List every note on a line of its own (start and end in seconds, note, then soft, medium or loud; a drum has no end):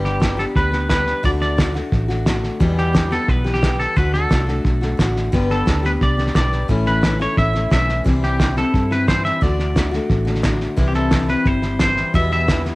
0.00 0.44 G1 medium
0.00 0.21 G2 medium
0.00 0.22 D3 medium
0.00 0.19 G3 medium
0.00 0.20 B3 medium
0.00 0.22 D4 medium
0.00 0.22 G4 medium
0.05 0.40 G4 medium
0.05 snare soft
0.20 0.38 G3 soft
0.20 0.38 B3 medium
0.20 0.37 D4 medium
0.20 0.36 G4 medium
0.20 kick medium
0.20 snare loud
0.20 hi-hat pedal medium
0.37 0.74 G3 soft
0.37 0.73 B3 soft
0.37 0.72 D4 medium
0.37 0.71 G4 medium
0.37 0.44 A4 medium
0.37 snare soft
0.56 1.12 D2 medium
0.56 0.89 B4 medium
0.56 kick medium
0.56 snare soft
0.72 0.88 G3 soft
0.72 0.89 B3 soft
0.72 0.90 D4 soft
0.72 0.90 G4 soft
0.72 snare soft
0.89 1.23 G3 medium
0.89 1.23 B3 medium
0.89 1.23 D4 medium
0.89 1.25 G4 medium
0.89 1.25 B4 medium
0.89 kick medium
0.89 snare loud
0.89 hi-hat pedal medium
1.07 snare soft
1.23 1.80 D2 medium
1.23 1.55 D3 medium
1.23 1.57 A3 medium
1.23 1.57 D4 medium
1.23 1.58 F#4 medium
1.23 1.30 D5 medium
1.23 kick medium
1.23 snare soft
1.41 1.73 D5 medium
1.41 snare soft
1.57 1.74 D3 soft
1.57 1.75 A3 medium
1.57 1.74 D4 medium
1.57 1.73 F#4 medium
1.57 kick medium
1.57 snare loud
1.57 hi-hat pedal medium
1.74 2.10 A3 soft
1.74 2.09 D4 soft
1.74 2.07 F#4 medium
1.74 snare soft
1.92 2.48 A1 medium
1.92 kick loud
1.92 snare soft
2.08 2.25 A3 soft
2.08 2.26 D4 soft
2.08 2.26 F#4 medium
2.08 snare soft
2.25 2.60 D3 medium
2.25 2.61 A3 medium
2.25 2.61 D4 medium
2.25 2.61 F#4 medium
2.25 kick medium
2.25 snare loud
2.25 hi-hat pedal medium
2.43 snare soft
2.60 2.94 E2 medium
2.60 3.17 E2 medium
2.60 2.94 B2 medium
2.60 2.92 E3 medium
2.60 2.93 G3 medium
2.60 2.94 B3 medium
2.60 2.95 G4 medium
2.60 kick loud
2.60 snare soft
2.78 3.13 G4 medium
2.78 snare soft
2.93 3.11 E3 soft
2.93 3.11 G3 medium
2.93 3.11 B3 medium
2.93 3.09 G4 medium
2.93 kick medium
2.93 snare loud
2.93 hi-hat pedal medium
3.10 3.46 E3 soft
3.10 3.46 G3 soft
3.10 3.45 B3 soft
3.10 3.43 G4 medium
3.10 3.29 A4 medium
3.10 snare soft
3.28 3.85 B1 medium
3.28 3.55 B4 loud
3.28 kick loud
3.28 snare soft
3.44 3.61 E3 soft
3.44 3.62 G3 soft
3.44 3.62 B3 soft
3.44 3.62 G4 soft
3.44 snare soft
3.54 3.80 G4 medium
3.54 snare soft
3.62 3.96 E3 soft
3.62 3.96 G3 soft
3.62 3.97 B3 medium
3.62 3.98 G4 medium
3.62 kick medium
3.62 snare loud
3.62 hi-hat pedal medium
3.80 3.97 A4 medium
3.80 snare soft
3.96 4.25 D2 medium
3.96 4.28 D3 medium
3.96 4.29 A3 medium
3.96 4.31 D4 medium
3.96 4.31 F#4 medium
3.96 4.13 B4 medium
3.96 kick medium
3.96 snare soft
4.14 5.12 A4 medium
4.14 snare soft
4.29 4.60 C2 medium
4.29 4.47 D3 soft
4.29 4.48 A3 soft
4.29 4.48 D4 medium
4.29 4.46 F#4 medium
4.29 kick medium
4.29 snare medium
4.29 hi-hat pedal medium
4.47 4.83 A3 soft
4.47 4.82 D4 soft
4.47 4.80 F#4 soft
4.47 snare soft
4.65 4.94 B1 medium
4.65 kick medium
4.65 snare soft
4.81 4.98 A3 soft
4.81 4.99 D4 soft
4.81 4.99 F#4 soft
4.81 snare soft
4.97 5.28 A1 medium
4.97 5.31 D3 medium
4.97 5.33 A3 medium
4.97 5.33 D4 medium
4.97 5.34 F#4 medium
4.97 kick medium
4.97 snare medium
4.97 hi-hat pedal medium
5.16 snare soft
5.32 5.61 G1 medium
5.32 5.67 G2 medium
5.32 5.67 D3 medium
5.32 5.65 G3 medium
5.32 5.66 B3 medium
5.32 5.67 D4 medium
5.32 5.68 G4 medium
5.32 kick medium
5.32 snare soft
5.50 5.86 A4 medium
5.50 snare soft
5.66 5.96 D2 medium
5.66 5.84 G3 medium
5.66 5.84 B3 medium
5.66 5.84 D4 medium
5.66 5.82 G4 soft
5.66 kick medium
5.66 snare loud
5.66 hi-hat pedal medium
5.83 6.19 G3 soft
5.83 6.19 B3 soft
5.83 6.17 D4 soft
5.83 6.16 G4 medium
5.83 5.91 B4 medium
5.83 snare soft
6.01 6.30 C2 medium
6.01 6.35 D5 medium
6.01 kick loud
6.01 snare soft
6.17 6.33 G3 soft
6.17 6.34 B3 soft
6.17 6.35 D4 soft
6.17 6.35 G4 soft
6.17 snare soft
6.27 snare soft
6.34 6.64 B1 medium
6.34 6.68 G3 soft
6.34 6.69 B3 medium
6.34 6.70 D4 soft
6.34 6.70 G4 medium
6.34 6.67 D5 medium
6.34 kick medium
6.34 snare loud
6.34 hi-hat pedal medium
6.52 snare soft
6.68 7.25 A1 medium
6.68 7.03 A2 medium
6.68 7.01 E3 medium
6.68 7.02 A3 medium
6.68 7.03 C#4 medium
6.68 7.04 E4 medium
6.68 kick medium
6.68 snare soft
6.86 7.18 B4 medium
6.86 snare soft
7.02 7.20 E3 soft
7.02 7.20 A3 medium
7.02 7.19 C#4 medium
7.02 7.18 E4 soft
7.02 kick medium
7.02 snare loud
7.02 hi-hat pedal medium
7.19 7.55 A3 soft
7.19 7.54 C#4 soft
7.19 7.52 E4 soft
7.19 7.37 C#5 medium
7.19 snare soft
7.37 7.66 A1 medium
7.37 7.69 E5 loud
7.37 kick loud
7.37 snare soft
7.53 7.70 A3 soft
7.53 7.71 C#4 soft
7.53 7.71 E4 medium
7.53 snare soft
7.70 8.00 B1 medium
7.70 8.04 E3 medium
7.70 8.05 A3 medium
7.70 8.06 C#4 medium
7.70 8.06 E4 medium
7.70 8.04 E5 medium
7.70 kick medium
7.70 snare loud
7.70 hi-hat pedal medium
7.89 snare soft
8.04 8.62 C2 medium
8.04 8.39 C3 medium
8.04 8.38 E3 medium
8.04 8.39 G3 medium
8.04 8.40 C4 medium
8.04 8.40 E4 medium
8.04 kick medium
8.04 snare soft
8.23 8.57 G4 medium
8.23 snare soft
8.39 8.56 E3 soft
8.39 8.57 G3 medium
8.39 8.57 C4 medium
8.39 8.55 E4 medium
8.39 kick medium
8.39 snare loud
8.39 hi-hat pedal medium
8.56 8.92 G3 soft
8.56 8.91 C4 soft
8.56 8.89 E4 soft
8.56 8.92 A4 medium
8.56 snare soft
8.74 9.30 G2 medium
8.74 kick medium
8.74 snare soft
8.90 9.07 G3 soft
8.90 9.08 C4 soft
8.90 9.08 E4 soft
8.90 9.08 B4 medium
8.90 snare soft
9.07 9.40 E3 soft
9.07 9.41 G3 medium
9.07 9.42 C4 medium
9.07 9.43 E4 medium
9.07 9.24 C5 medium
9.07 kick medium
9.07 snare medium
9.07 hi-hat pedal medium
9.25 9.42 E5 medium
9.25 snare soft
9.41 9.98 D2 medium
9.41 9.74 D3 medium
9.41 9.74 A3 medium
9.41 9.76 D4 medium
9.41 9.76 F#4 medium
9.41 10.44 D5 medium
9.41 kick medium
9.41 snare soft
9.59 snare soft
9.75 9.92 D3 soft
9.75 9.93 A3 medium
9.75 9.92 D4 medium
9.75 9.90 F#4 medium
9.75 kick medium
9.75 snare loud
9.75 hi-hat pedal medium
9.91 10.27 A3 soft
9.91 10.26 D4 soft
9.91 10.24 F#4 medium
9.91 snare soft
10.10 10.66 A1 medium
10.10 kick medium
10.10 snare soft
10.25 10.42 A3 soft
10.25 10.44 D4 medium
10.25 10.43 F#4 medium
10.25 snare soft
10.35 snare soft
10.42 10.77 D3 medium
10.42 10.77 A3 medium
10.42 10.77 D4 medium
10.42 10.78 F#4 medium
10.42 kick medium
10.42 snare loud
10.42 hi-hat pedal medium
10.61 snare soft
10.77 11.34 C2 medium
10.77 11.11 C3 medium
10.77 11.10 E3 medium
10.77 11.11 G3 medium
10.77 11.12 C4 medium
10.77 11.14 E4 medium
10.77 kick medium
10.77 snare soft
10.88 10.95 G4 medium
10.94 11.27 A4 medium
10.94 snare soft
11.11 11.28 E3 soft
11.11 11.29 G3 soft
11.11 11.28 C4 soft
11.11 11.27 E4 medium
11.11 kick medium
11.11 snare loud
11.11 hi-hat pedal medium
11.28 11.64 G3 soft
11.28 11.63 C4 soft
11.28 11.62 E4 soft
11.28 11.47 B4 medium
11.28 snare soft
11.45 12.02 G1 medium
11.45 11.80 C5 medium
11.45 kick loud
11.45 snare soft
11.62 11.79 G3 soft
11.62 11.80 C4 soft
11.62 11.80 E4 soft
11.62 snare soft
11.79 12.15 E3 soft
11.79 12.14 G3 medium
11.79 12.15 C4 soft
11.79 12.16 E4 medium
11.79 12.15 C5 medium
11.79 kick medium
11.79 snare loud
11.79 hi-hat pedal medium
11.97 snare soft
12.14 12.48 E2 medium
12.14 12.70 E2 medium
12.14 12.48 B2 medium
12.14 12.47 E3 medium
12.14 12.48 G3 medium
12.14 12.49 B3 medium
12.14 12.50 E4 medium
12.14 12.31 E5 loud
12.14 kick loud
12.14 snare soft
12.31 12.64 E5 medium
12.31 snare soft
12.48 12.65 E3 medium
12.48 12.66 G3 medium
12.48 12.65 B3 medium
12.48 12.64 E4 medium
12.48 kick medium
12.48 snare loud
12.48 hi-hat pedal medium
12.65 12.75 E3 soft
12.65 12.75 G3 soft
12.65 12.75 B3 medium
12.65 12.75 E4 soft
12.65 snare soft